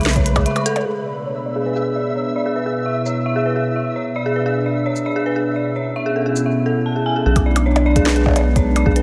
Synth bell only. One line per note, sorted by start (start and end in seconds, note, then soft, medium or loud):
0.00 0.36 G#4 loud
0.00 0.66 A4 medium
0.00 0.46 E5 loud
0.16 0.25 C#5 medium
0.36 0.45 G#4 medium
0.46 0.55 E5 medium
0.56 0.65 C#6 medium
0.66 0.75 A4 loud
0.86 0.95 G#4 medium
1.06 1.11 D5 medium
1.26 1.35 C#5 medium
1.46 1.55 D5 medium
1.56 1.65 G#4 medium
1.66 1.75 B4 medium
1.76 1.85 G#4 medium
1.96 2.01 D5 medium
2.16 2.25 C#5 medium
2.36 2.45 D5 medium
2.46 2.55 G#4 medium
2.56 2.65 B4 medium
2.66 2.75 G#4 medium
2.86 2.91 E5 medium
3.06 3.15 C#5 medium
3.26 3.35 E5 medium
3.36 3.45 G#4 medium
3.46 3.55 B4 medium
3.56 3.65 G#4 medium
3.76 3.81 E5 medium
3.96 4.05 C#5 medium
4.16 4.25 D5 medium
4.26 4.35 G#4 medium
4.36 4.45 B4 medium
4.46 4.55 G#4 loud
4.66 4.71 D5 medium
4.86 4.95 C#5 medium
5.06 5.15 D5 medium
5.16 5.25 G#4 medium
5.26 5.35 B4 medium
5.36 5.45 G#4 medium
5.56 5.61 D5 medium
5.76 5.85 C#5 medium
5.96 6.05 E5 medium
6.06 6.15 G#4 loud
6.16 6.25 A4 medium
6.26 6.35 G#4 medium
6.46 6.51 E5 medium
6.66 6.71 A4 medium
6.86 6.95 A5 medium
6.96 7.05 G#4 medium
7.06 7.15 G#5 loud
7.16 7.25 G#4 medium
7.26 7.35 G#4 loud
7.46 7.51 D5 medium
7.66 7.75 C#5 medium
7.86 7.95 D5 loud
7.96 8.05 G#4 loud
8.06 8.15 B4 medium
8.16 8.25 G#4 loud
8.36 8.41 D5 medium
8.56 8.65 C#5 medium
8.76 8.85 D5 loud
8.86 8.95 G#4 loud
8.96 9.02 B4 medium